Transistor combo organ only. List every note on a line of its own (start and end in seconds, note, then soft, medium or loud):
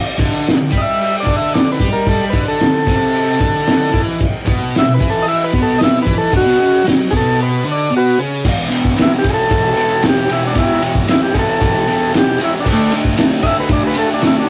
0.78 0.81 D#5 medium
0.82 1.16 E5 loud
1.20 1.36 D5 medium
1.37 1.53 E5 medium
1.54 1.71 D5 medium
1.72 1.89 B4 medium
1.93 2.08 A#4 medium
2.09 2.25 A4 medium
2.30 2.44 B4 medium
2.48 4.01 A4 medium
4.79 4.93 E5 loud
4.94 5.10 B4 loud
5.10 5.27 A4 medium
5.22 5.26 D#5 medium
5.28 5.45 E5 loud
5.44 5.62 B4 loud
5.62 5.80 A4 medium
5.79 5.81 D#5 medium
5.83 5.99 E5 loud
6.02 6.17 B4 loud
6.18 6.34 A4 medium
6.36 6.86 F#4 loud
7.11 7.14 G#4 medium
7.17 7.40 A4 loud
7.43 7.67 B4 medium
7.72 7.94 D5 medium
7.97 8.19 F#4 loud
7.97 8.21 B4 loud
9.02 9.12 E4 loud
9.18 9.27 G4 medium
9.34 10.05 A4 loud
10.09 10.32 G4 medium
10.32 10.43 E4 medium
10.47 10.57 D4 medium
10.59 10.83 E4 medium
11.10 11.21 E4 loud
11.23 11.34 G4 medium
11.34 11.37 G#4 medium
11.39 12.13 A4 medium
12.19 12.41 G4 loud
12.44 12.54 E4 medium
12.60 12.69 D4 medium
12.73 12.93 A3 medium
12.73 12.95 D4 loud
13.43 13.46 D#5 medium
13.43 13.57 E5 loud
13.60 13.70 B4 medium
13.73 13.83 D5 medium
13.87 13.97 B4 medium
13.99 14.09 A4 loud
14.14 14.23 D4 medium
14.27 14.36 E4 medium
14.40 14.49 D4 medium